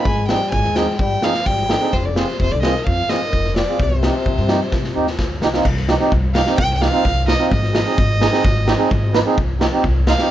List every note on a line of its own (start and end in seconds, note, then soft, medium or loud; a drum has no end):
0.05 0.33 G#1 medium
0.05 0.31 G#3 medium
0.05 0.28 G#5 medium
0.05 kick medium
0.28 0.55 G3 medium
0.28 0.40 C4 medium
0.28 0.40 D#4 medium
0.28 0.40 G#4 medium
0.28 0.50 G5 medium
0.28 snare medium
0.51 0.59 G#1 loud
0.51 0.99 G#3 medium
0.51 0.77 G#5 medium
0.51 kick medium
0.64 0.85 D#2 medium
0.64 snare soft
0.75 0.87 C4 medium
0.75 0.87 D#4 medium
0.75 0.87 G#4 medium
0.75 0.98 G5 medium
0.75 snare medium
0.98 1.13 G#2 loud
0.98 1.21 G3 medium
0.98 1.25 G5 medium
0.98 kick medium
1.22 1.48 F3 medium
1.22 1.34 C4 medium
1.22 1.34 D#4 medium
1.22 1.34 G#4 medium
1.22 1.48 F5 loud
1.22 snare medium
1.35 snare medium
1.46 1.74 G#1 medium
1.46 1.69 G3 medium
1.46 1.94 G5 loud
1.46 kick medium
1.69 1.91 D3 medium
1.69 1.75 D#4 medium
1.69 1.75 G#4 medium
1.69 snare medium
1.80 1.92 C4 medium
1.80 1.92 D#4 medium
1.80 1.92 G#4 medium
1.92 2.21 F1 medium
1.92 2.05 C3 medium
1.92 2.07 C5 medium
1.92 kick medium
2.04 2.16 D3 medium
2.04 2.19 D5 medium
2.15 2.38 C3 medium
2.15 2.27 C4 medium
2.15 2.27 F4 medium
2.15 2.27 G#4 medium
2.15 2.40 C5 medium
2.15 snare medium
2.28 snare soft
2.39 2.47 F1 medium
2.39 2.54 C3 medium
2.39 2.53 C5 medium
2.39 kick medium
2.51 2.72 C2 medium
2.51 2.66 D3 medium
2.51 2.62 D5 medium
2.63 2.89 D#3 medium
2.63 2.74 C4 medium
2.63 2.74 F4 medium
2.63 2.74 G#4 medium
2.63 2.84 D#5 medium
2.63 snare medium
2.86 3.01 F2 medium
2.86 3.13 F3 medium
2.86 3.11 F5 medium
2.86 kick medium
3.09 3.19 D#3 medium
3.09 3.21 C4 medium
3.09 3.21 F4 medium
3.09 3.21 G#4 medium
3.09 3.56 D#5 loud
3.09 snare medium
3.18 3.27 F3 medium
3.25 3.53 D#3 medium
3.33 3.61 F1 medium
3.33 kick medium
3.45 snare soft
3.56 3.62 F4 medium
3.56 3.62 G4 medium
3.56 3.83 D5 medium
3.56 snare medium
3.68 3.79 C4 medium
3.68 3.79 F4 medium
3.68 3.80 G#4 medium
3.80 4.08 C2 medium
3.80 3.91 C3 medium
3.80 5.20 C5 medium
3.80 kick medium
3.89 3.96 B2 medium
3.95 5.20 C3 loud
4.03 4.14 C4 medium
4.03 4.14 D#4 medium
4.03 4.14 G4 medium
4.03 snare medium
4.26 4.33 C2 loud
4.26 kick medium
4.37 4.59 G2 medium
4.37 snare soft
4.48 4.60 C4 medium
4.48 4.60 D#4 medium
4.48 4.60 G4 medium
4.48 snare medium
4.72 4.87 C3 medium
4.72 kick medium
4.72 snare medium
4.84 snare soft
4.95 5.17 D#2 medium
4.95 5.07 C4 medium
4.95 5.07 D#4 medium
4.95 5.07 G4 medium
5.07 snare medium
5.19 5.40 D2 medium
5.19 kick medium
5.19 snare medium
5.41 5.63 C2 medium
5.41 5.48 D#4 medium
5.41 5.48 G4 loud
5.41 snare medium
5.54 5.66 C4 medium
5.54 5.66 D#4 medium
5.54 5.66 F4 medium
5.54 snare medium
5.65 5.93 C2 loud
5.65 kick medium
5.65 crash medium
5.77 snare soft
5.89 5.95 D#4 medium
5.89 5.95 G4 loud
5.89 snare loud
6.00 6.12 C4 medium
6.00 6.12 D#4 medium
6.00 6.12 G4 medium
6.00 snare soft
6.12 6.40 C2 loud
6.12 kick medium
6.35 6.41 D#4 medium
6.35 6.41 G4 medium
6.35 6.57 F5 loud
6.35 snare loud
6.46 6.58 C4 medium
6.46 6.58 D#4 medium
6.46 6.58 G4 medium
6.46 snare medium
6.58 6.86 C2 loud
6.58 6.73 G5 loud
6.58 kick loud
6.74 6.83 G5 medium
6.80 6.87 D#4 medium
6.80 6.87 G4 medium
6.80 7.28 F5 loud
6.80 snare medium
6.92 7.04 C4 medium
6.92 7.04 D#4 medium
6.92 7.04 F4 medium
6.92 snare soft
7.05 7.33 C2 loud
7.05 kick medium
7.05 snare soft
7.27 7.33 D#4 medium
7.27 7.33 F4 medium
7.27 7.50 D#5 medium
7.27 snare medium
7.39 7.51 C4 medium
7.39 7.51 D#4 medium
7.39 7.51 F4 medium
7.39 snare soft
7.51 7.79 G#1 loud
7.51 9.10 D#5 loud
7.51 kick medium
7.63 snare soft
7.73 7.80 D#4 medium
7.73 7.80 G#4 medium
7.73 snare loud
7.85 7.97 C4 medium
7.85 7.97 D#4 medium
7.85 7.98 G#4 medium
7.85 snare soft
7.98 8.26 G#1 loud
7.98 kick medium
8.21 8.27 D#4 loud
8.21 8.27 G#4 loud
8.21 snare medium
8.31 8.43 C4 medium
8.31 8.43 D#4 medium
8.31 8.43 G#4 medium
8.31 snare medium
8.45 8.72 G#1 loud
8.45 kick loud
8.67 8.73 D#4 medium
8.67 8.73 G4 loud
8.67 snare medium
8.78 8.90 C4 medium
8.78 8.90 D#4 medium
8.78 8.90 G#4 medium
8.91 9.19 G#1 loud
8.91 kick medium
9.14 9.20 D#4 medium
9.14 9.20 B4 loud
9.14 snare loud
9.26 9.37 C4 medium
9.26 9.37 D#4 medium
9.26 9.37 G#4 medium
9.38 9.65 C2 medium
9.38 kick medium
9.60 9.66 D#4 medium
9.60 9.66 G4 loud
9.60 snare loud
9.72 9.84 C4 medium
9.72 9.83 D#4 medium
9.72 9.84 G4 medium
9.84 10.11 C2 loud
9.84 kick medium
10.07 10.13 D#4 medium
10.07 10.13 F4 loud
10.07 10.31 F5 medium
10.07 snare loud
10.19 10.31 C4 medium
10.19 10.31 D#4 medium
10.19 10.30 G4 medium
10.19 snare medium